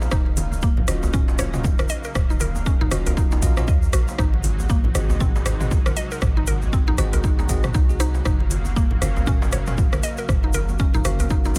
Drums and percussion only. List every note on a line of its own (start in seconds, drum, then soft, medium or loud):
0.02 djembe slap medium
0.02 shaker soft
0.11 kick loud
0.11 cross-stick loud
0.11 mid tom medium
0.11 djembe tone medium
0.11 shaker medium
0.26 muted conga soft
0.37 open hi-hat loud
0.37 djembe slap medium
0.37 high conga loud
0.37 shaker loud
0.52 muted conga soft
0.52 djembe tone medium
0.52 shaker soft
0.62 kick loud
0.62 shaker medium
0.77 muted conga soft
0.77 low conga loud
0.88 cross-stick loud
0.88 open hi-hat medium
0.88 high conga loud
0.88 shaker loud
1.03 djembe slap medium
1.03 muted conga soft
1.03 djembe bass medium
1.03 shaker soft
1.13 kick loud
1.13 mid tom medium
1.13 high conga medium
1.13 low conga loud
1.13 shaker medium
1.28 djembe slap loud
1.28 shaker soft
1.38 cross-stick loud
1.38 open hi-hat loud
1.38 muted conga soft
1.38 low conga medium
1.38 shaker medium
1.54 mid tom medium
1.54 djembe slap medium
1.54 shaker soft
1.63 kick loud
1.63 muted conga soft
1.63 djembe tone medium
1.63 low conga loud
1.63 shaker medium
1.79 cross-stick loud
1.79 high conga loud
1.79 shaker soft
1.89 open hi-hat medium
1.89 muted conga medium
1.89 shaker loud
2.04 shaker soft
2.15 kick loud
2.15 cross-stick loud
2.15 mid tom medium
2.15 djembe tone medium
2.15 shaker medium
2.30 muted conga medium
2.30 shaker soft
2.40 open hi-hat medium
2.40 djembe slap medium
2.40 high conga loud
2.40 shaker medium
2.55 muted conga soft
2.55 djembe tone medium
2.55 shaker soft
2.66 kick loud
2.66 shaker medium
2.81 muted conga medium
2.81 low conga loud
2.91 cross-stick loud
2.91 open hi-hat medium
2.91 high conga loud
2.91 shaker medium
3.06 open hi-hat medium
3.06 muted conga soft
3.06 djembe slap medium
3.06 djembe bass medium
3.06 shaker soft
3.17 kick loud
3.17 shaker medium
3.31 djembe slap loud
3.31 djembe bass medium
3.31 shaker soft
3.42 kick medium
3.42 open hi-hat medium
3.42 muted conga soft
3.42 shaker medium
3.57 cross-stick medium
3.57 mid tom medium
3.57 djembe tone medium
3.57 shaker soft
3.67 kick loud
3.67 muted conga soft
3.67 shaker medium
3.82 shaker soft
3.92 cross-stick loud
3.92 open hi-hat medium
3.92 muted conga medium
3.92 shaker loud
4.08 djembe slap medium
4.08 shaker soft
4.18 kick loud
4.18 cross-stick medium
4.18 mid tom medium
4.18 djembe tone medium
4.18 shaker soft
4.34 muted conga soft
4.43 open hi-hat medium
4.43 djembe slap medium
4.43 high conga medium
4.43 shaker medium
4.59 muted conga soft
4.59 djembe tone medium
4.59 shaker soft
4.69 kick loud
4.69 shaker medium
4.84 muted conga medium
4.84 low conga loud
4.95 cross-stick medium
4.95 open hi-hat medium
4.95 high conga medium
4.95 shaker medium
5.10 djembe slap medium
5.10 muted conga soft
5.10 djembe bass medium
5.10 shaker soft
5.20 kick loud
5.20 mid tom medium
5.20 high conga medium
5.20 low conga medium
5.20 shaker medium
5.36 djembe slap loud
5.36 shaker soft
5.46 cross-stick loud
5.46 open hi-hat medium
5.46 muted conga soft
5.46 low conga medium
5.46 shaker loud
5.60 mid tom medium
5.60 djembe slap medium
5.60 shaker soft
5.71 kick loud
5.71 muted conga soft
5.71 djembe tone medium
5.71 low conga loud
5.71 shaker medium
5.86 cross-stick medium
5.86 high conga loud
5.86 shaker soft
5.96 open hi-hat medium
5.96 muted conga medium
5.96 shaker loud
6.11 shaker soft
6.21 kick loud
6.21 cross-stick medium
6.21 mid tom medium
6.21 djembe tone medium
6.21 shaker soft
6.37 muted conga medium
6.47 open hi-hat medium
6.47 djembe slap medium
6.47 high conga medium
6.47 shaker loud
6.62 muted conga soft
6.62 djembe tone medium
6.62 shaker soft
6.73 kick loud
6.73 shaker soft
6.87 muted conga medium
6.87 low conga loud
6.98 cross-stick medium
6.98 open hi-hat medium
6.98 high conga medium
6.98 shaker medium
7.13 open hi-hat soft
7.13 muted conga soft
7.13 djembe slap medium
7.13 djembe bass loud
7.13 shaker soft
7.24 kick loud
7.24 shaker medium
7.39 djembe slap medium
7.39 djembe bass medium
7.39 shaker soft
7.49 kick medium
7.49 open hi-hat medium
7.49 muted conga medium
7.49 shaker loud
7.63 cross-stick medium
7.63 mid tom medium
7.63 djembe tone medium
7.63 shaker soft
7.74 kick loud
7.74 shaker soft
7.90 shaker soft
8.00 cross-stick medium
8.00 open hi-hat medium
8.00 muted conga medium
8.00 shaker medium
8.14 djembe slap medium
8.14 shaker soft
8.25 kick loud
8.25 cross-stick medium
8.25 mid tom medium
8.25 djembe tone medium
8.25 shaker medium
8.40 muted conga medium
8.50 open hi-hat medium
8.50 djembe slap medium
8.50 high conga medium
8.50 shaker medium
8.65 muted conga soft
8.65 djembe tone medium
8.65 shaker soft
8.76 kick loud
8.76 shaker medium
8.90 muted conga soft
8.90 low conga loud
9.02 cross-stick medium
9.02 open hi-hat medium
9.02 high conga loud
9.02 shaker medium
9.16 muted conga soft
9.16 djembe slap medium
9.16 djembe bass medium
9.16 shaker soft
9.26 kick loud
9.26 mid tom medium
9.26 high conga medium
9.26 low conga loud
9.26 shaker medium
9.42 djembe slap loud
9.42 shaker soft
9.52 cross-stick medium
9.52 open hi-hat medium
9.52 muted conga medium
9.52 low conga medium
9.52 shaker loud
9.67 mid tom medium
9.67 djembe slap medium
9.67 shaker soft
9.78 kick loud
9.78 muted conga soft
9.78 djembe tone medium
9.78 low conga loud
9.78 shaker soft
9.93 cross-stick medium
9.93 high conga loud
9.93 shaker soft
10.03 open hi-hat medium
10.03 muted conga medium
10.03 shaker medium
10.17 shaker soft
10.29 kick loud
10.29 cross-stick medium
10.29 mid tom medium
10.29 djembe tone medium
10.29 shaker soft
10.43 muted conga medium
10.53 open hi-hat loud
10.53 djembe slap medium
10.53 high conga medium
10.53 shaker medium
10.69 muted conga soft
10.69 djembe tone medium
10.69 shaker soft
10.79 kick loud
10.79 shaker soft
10.94 muted conga medium
10.94 low conga loud
10.94 shaker soft
11.05 cross-stick loud
11.05 open hi-hat loud
11.05 high conga medium
11.05 shaker medium
11.19 open hi-hat medium
11.19 muted conga soft
11.19 djembe slap medium
11.19 djembe bass loud
11.19 shaker soft
11.30 kick loud
11.30 shaker medium
11.45 djembe slap loud
11.45 djembe bass medium
11.45 shaker soft
11.55 high conga medium
11.55 shaker medium